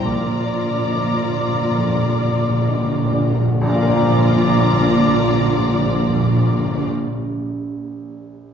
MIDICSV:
0, 0, Header, 1, 11, 480
1, 0, Start_track
1, 0, Key_signature, -2, "major"
1, 0, Tempo, 874636
1, 13, Time_signature, 4, 2, 24, 8
1, 973, Tempo, 914634
1, 1453, Tempo, 933126
1, 4461, End_track
2, 0, Start_track
2, 0, Title_t, "Flute section"
2, 0, Program_c, 0, 73
2, 21, Note_on_c, 0, 86, 64
2, 1719, Note_off_c, 0, 86, 0
2, 1935, Note_on_c, 0, 86, 87
2, 3611, Note_off_c, 0, 86, 0
2, 4461, End_track
3, 0, Start_track
3, 0, Title_t, "Violin section"
3, 0, Program_c, 1, 48
3, 14, Note_on_c, 1, 82, 63
3, 1810, Note_off_c, 1, 82, 0
3, 1933, Note_on_c, 1, 82, 84
3, 3609, Note_off_c, 1, 82, 0
3, 4461, End_track
4, 0, Start_track
4, 0, Title_t, "Violin section"
4, 0, Program_c, 2, 48
4, 9, Note_on_c, 2, 74, 58
4, 1808, Note_off_c, 2, 74, 0
4, 1933, Note_on_c, 2, 74, 82
4, 3609, Note_off_c, 2, 74, 0
4, 4461, End_track
5, 0, Start_track
5, 0, Title_t, "Grand piano"
5, 0, Program_c, 3, 0
5, 0, Control_c, 3, 64, 127
5, 14, Note_on_c, 3, 34, 59
5, 24, Control_c, 3, 64, 0
5, 134, Control_c, 3, 64, 127
5, 252, Note_on_c, 3, 74, 51
5, 492, Note_on_c, 3, 63, 42
5, 633, Note_off_c, 3, 74, 0
5, 728, Note_on_c, 3, 74, 48
5, 731, Note_off_c, 3, 63, 0
5, 952, Note_off_c, 3, 34, 0
5, 974, Note_on_c, 3, 41, 50
5, 1115, Note_off_c, 3, 74, 0
5, 1209, Note_on_c, 3, 74, 47
5, 1356, Note_off_c, 3, 41, 0
5, 1449, Note_on_c, 3, 63, 41
5, 1595, Note_off_c, 3, 74, 0
5, 1685, Note_on_c, 3, 74, 50
5, 1691, Note_off_c, 3, 63, 0
5, 1928, Note_on_c, 3, 34, 80
5, 1929, Note_off_c, 3, 74, 0
5, 1943, Control_c, 3, 64, 0
5, 1963, Note_on_c, 3, 46, 74
5, 2002, Note_on_c, 3, 65, 68
5, 2036, Note_on_c, 3, 70, 71
5, 2037, Control_c, 3, 64, 127
5, 2071, Note_on_c, 3, 74, 70
5, 2109, Note_on_c, 3, 82, 69
5, 3604, Note_off_c, 3, 34, 0
5, 3640, Note_off_c, 3, 46, 0
5, 3678, Note_off_c, 3, 65, 0
5, 3712, Note_off_c, 3, 70, 0
5, 3747, Note_off_c, 3, 74, 0
5, 3786, Note_off_c, 3, 82, 0
5, 4461, End_track
6, 0, Start_track
6, 0, Title_t, "Clarinet"
6, 0, Program_c, 4, 71
6, 10, Note_on_c, 4, 65, 57
6, 1713, Note_off_c, 4, 65, 0
6, 1934, Note_on_c, 4, 65, 81
6, 3610, Note_off_c, 4, 65, 0
6, 4461, End_track
7, 0, Start_track
7, 0, Title_t, "Viola section"
7, 0, Program_c, 5, 48
7, 14, Note_on_c, 5, 65, 62
7, 1790, Note_off_c, 5, 65, 0
7, 1935, Note_on_c, 5, 65, 89
7, 3611, Note_off_c, 5, 65, 0
7, 4461, End_track
8, 0, Start_track
8, 0, Title_t, "French horn section"
8, 0, Program_c, 6, 60
8, 13, Note_on_c, 6, 74, 63
8, 17, Note_on_c, 6, 53, 64
8, 1715, Note_off_c, 6, 74, 0
8, 1717, Note_off_c, 6, 53, 0
8, 1938, Note_on_c, 6, 62, 83
8, 1939, Note_on_c, 6, 53, 86
8, 3614, Note_off_c, 6, 62, 0
8, 3615, Note_off_c, 6, 53, 0
8, 4461, End_track
9, 0, Start_track
9, 0, Title_t, "Cello section"
9, 0, Program_c, 7, 48
9, 12, Note_on_c, 7, 46, 70
9, 1788, Note_off_c, 7, 46, 0
9, 1934, Note_on_c, 7, 46, 89
9, 3610, Note_off_c, 7, 46, 0
9, 4461, End_track
10, 0, Start_track
10, 0, Title_t, "Timpani"
10, 0, Program_c, 8, 47
10, 13, Note_on_c, 8, 46, 42
10, 55, Note_off_c, 8, 46, 0
10, 61, Note_on_c, 8, 46, 41
10, 97, Note_off_c, 8, 46, 0
10, 104, Note_on_c, 8, 46, 42
10, 147, Note_off_c, 8, 46, 0
10, 153, Note_on_c, 8, 46, 44
10, 194, Note_off_c, 8, 46, 0
10, 200, Note_on_c, 8, 46, 45
10, 235, Note_off_c, 8, 46, 0
10, 242, Note_on_c, 8, 46, 44
10, 282, Note_off_c, 8, 46, 0
10, 289, Note_on_c, 8, 46, 46
10, 331, Note_off_c, 8, 46, 0
10, 339, Note_on_c, 8, 46, 48
10, 373, Note_off_c, 8, 46, 0
10, 379, Note_on_c, 8, 46, 47
10, 420, Note_off_c, 8, 46, 0
10, 426, Note_on_c, 8, 46, 50
10, 465, Note_off_c, 8, 46, 0
10, 472, Note_on_c, 8, 46, 48
10, 514, Note_off_c, 8, 46, 0
10, 525, Note_on_c, 8, 46, 54
10, 564, Note_off_c, 8, 46, 0
10, 570, Note_on_c, 8, 46, 51
10, 609, Note_off_c, 8, 46, 0
10, 618, Note_on_c, 8, 46, 54
10, 657, Note_off_c, 8, 46, 0
10, 665, Note_on_c, 8, 46, 55
10, 704, Note_off_c, 8, 46, 0
10, 711, Note_on_c, 8, 46, 58
10, 750, Note_off_c, 8, 46, 0
10, 758, Note_on_c, 8, 46, 63
10, 797, Note_off_c, 8, 46, 0
10, 804, Note_on_c, 8, 46, 66
10, 841, Note_off_c, 8, 46, 0
10, 848, Note_on_c, 8, 46, 62
10, 885, Note_off_c, 8, 46, 0
10, 892, Note_on_c, 8, 46, 67
10, 934, Note_off_c, 8, 46, 0
10, 941, Note_on_c, 8, 46, 68
10, 981, Note_off_c, 8, 46, 0
10, 987, Note_on_c, 8, 46, 65
10, 1025, Note_off_c, 8, 46, 0
10, 1032, Note_on_c, 8, 46, 68
10, 1068, Note_off_c, 8, 46, 0
10, 1075, Note_on_c, 8, 46, 68
10, 1113, Note_off_c, 8, 46, 0
10, 1120, Note_on_c, 8, 46, 77
10, 1159, Note_off_c, 8, 46, 0
10, 1166, Note_on_c, 8, 46, 74
10, 1204, Note_off_c, 8, 46, 0
10, 1210, Note_on_c, 8, 46, 77
10, 1248, Note_off_c, 8, 46, 0
10, 1254, Note_on_c, 8, 46, 72
10, 1297, Note_off_c, 8, 46, 0
10, 1303, Note_on_c, 8, 46, 82
10, 1342, Note_off_c, 8, 46, 0
10, 1348, Note_on_c, 8, 46, 93
10, 1391, Note_off_c, 8, 46, 0
10, 1397, Note_on_c, 8, 46, 88
10, 1438, Note_off_c, 8, 46, 0
10, 1444, Note_on_c, 8, 46, 87
10, 1482, Note_off_c, 8, 46, 0
10, 1489, Note_on_c, 8, 46, 100
10, 1532, Note_off_c, 8, 46, 0
10, 1538, Note_on_c, 8, 46, 99
10, 1575, Note_off_c, 8, 46, 0
10, 1581, Note_on_c, 8, 46, 91
10, 1623, Note_off_c, 8, 46, 0
10, 1629, Note_on_c, 8, 46, 91
10, 1669, Note_off_c, 8, 46, 0
10, 1676, Note_on_c, 8, 46, 109
10, 1715, Note_off_c, 8, 46, 0
10, 1721, Note_on_c, 8, 46, 112
10, 1763, Note_off_c, 8, 46, 0
10, 1769, Note_on_c, 8, 46, 112
10, 1811, Note_off_c, 8, 46, 0
10, 1817, Note_on_c, 8, 46, 109
10, 1856, Note_off_c, 8, 46, 0
10, 1862, Note_on_c, 8, 46, 110
10, 1904, Note_off_c, 8, 46, 0
10, 1934, Note_on_c, 8, 46, 99
10, 1969, Note_off_c, 8, 46, 0
10, 1971, Note_on_c, 8, 46, 85
10, 2006, Note_off_c, 8, 46, 0
10, 2007, Note_on_c, 8, 46, 98
10, 2040, Note_off_c, 8, 46, 0
10, 2040, Note_on_c, 8, 46, 88
10, 2075, Note_off_c, 8, 46, 0
10, 2076, Note_on_c, 8, 46, 92
10, 2108, Note_off_c, 8, 46, 0
10, 2108, Note_on_c, 8, 46, 96
10, 2142, Note_off_c, 8, 46, 0
10, 2142, Note_on_c, 8, 46, 99
10, 2177, Note_off_c, 8, 46, 0
10, 2180, Note_on_c, 8, 46, 89
10, 2214, Note_off_c, 8, 46, 0
10, 2214, Note_on_c, 8, 46, 94
10, 2249, Note_off_c, 8, 46, 0
10, 2250, Note_on_c, 8, 46, 94
10, 2284, Note_off_c, 8, 46, 0
10, 2284, Note_on_c, 8, 46, 87
10, 2318, Note_off_c, 8, 46, 0
10, 2318, Note_on_c, 8, 46, 90
10, 2353, Note_off_c, 8, 46, 0
10, 2354, Note_on_c, 8, 46, 96
10, 2388, Note_off_c, 8, 46, 0
10, 2388, Note_on_c, 8, 46, 91
10, 2423, Note_off_c, 8, 46, 0
10, 2426, Note_on_c, 8, 46, 96
10, 2461, Note_off_c, 8, 46, 0
10, 2462, Note_on_c, 8, 46, 90
10, 2496, Note_off_c, 8, 46, 0
10, 2496, Note_on_c, 8, 46, 92
10, 2531, Note_off_c, 8, 46, 0
10, 2533, Note_on_c, 8, 46, 90
10, 2568, Note_off_c, 8, 46, 0
10, 2568, Note_on_c, 8, 46, 101
10, 2603, Note_off_c, 8, 46, 0
10, 2604, Note_on_c, 8, 46, 93
10, 2639, Note_off_c, 8, 46, 0
10, 2643, Note_on_c, 8, 46, 98
10, 2678, Note_off_c, 8, 46, 0
10, 2680, Note_on_c, 8, 46, 92
10, 2713, Note_off_c, 8, 46, 0
10, 2713, Note_on_c, 8, 46, 102
10, 2744, Note_off_c, 8, 46, 0
10, 2744, Note_on_c, 8, 46, 90
10, 2778, Note_off_c, 8, 46, 0
10, 2778, Note_on_c, 8, 46, 102
10, 2811, Note_off_c, 8, 46, 0
10, 2811, Note_on_c, 8, 46, 94
10, 2846, Note_off_c, 8, 46, 0
10, 2846, Note_on_c, 8, 46, 97
10, 2879, Note_off_c, 8, 46, 0
10, 2879, Note_on_c, 8, 46, 89
10, 2914, Note_off_c, 8, 46, 0
10, 2915, Note_on_c, 8, 46, 82
10, 2949, Note_off_c, 8, 46, 0
10, 2949, Note_on_c, 8, 46, 99
10, 2981, Note_off_c, 8, 46, 0
10, 2981, Note_on_c, 8, 46, 98
10, 3016, Note_off_c, 8, 46, 0
10, 3019, Note_on_c, 8, 46, 86
10, 3051, Note_off_c, 8, 46, 0
10, 3051, Note_on_c, 8, 46, 91
10, 3086, Note_off_c, 8, 46, 0
10, 3086, Note_on_c, 8, 46, 85
10, 3121, Note_off_c, 8, 46, 0
10, 3125, Note_on_c, 8, 46, 96
10, 3160, Note_off_c, 8, 46, 0
10, 3163, Note_on_c, 8, 46, 87
10, 3198, Note_off_c, 8, 46, 0
10, 3199, Note_on_c, 8, 46, 95
10, 3234, Note_off_c, 8, 46, 0
10, 3234, Note_on_c, 8, 46, 98
10, 3268, Note_off_c, 8, 46, 0
10, 3268, Note_on_c, 8, 46, 96
10, 3303, Note_off_c, 8, 46, 0
10, 3305, Note_on_c, 8, 46, 89
10, 3340, Note_off_c, 8, 46, 0
10, 3343, Note_on_c, 8, 46, 93
10, 3378, Note_off_c, 8, 46, 0
10, 3380, Note_on_c, 8, 46, 85
10, 3415, Note_off_c, 8, 46, 0
10, 3415, Note_on_c, 8, 46, 98
10, 3450, Note_off_c, 8, 46, 0
10, 3451, Note_on_c, 8, 46, 93
10, 3486, Note_off_c, 8, 46, 0
10, 3488, Note_on_c, 8, 46, 94
10, 3523, Note_off_c, 8, 46, 0
10, 3523, Note_on_c, 8, 46, 92
10, 3558, Note_off_c, 8, 46, 0
10, 3559, Note_on_c, 8, 46, 94
10, 3594, Note_off_c, 8, 46, 0
10, 3595, Note_on_c, 8, 46, 98
10, 3630, Note_off_c, 8, 46, 0
10, 4461, End_track
11, 0, Start_track
11, 0, Title_t, "Double bass section"
11, 0, Program_c, 10, 48
11, 14, Note_on_c, 10, 34, 62
11, 1789, Note_off_c, 10, 34, 0
11, 1934, Note_on_c, 10, 34, 84
11, 3610, Note_off_c, 10, 34, 0
11, 4461, End_track
0, 0, End_of_file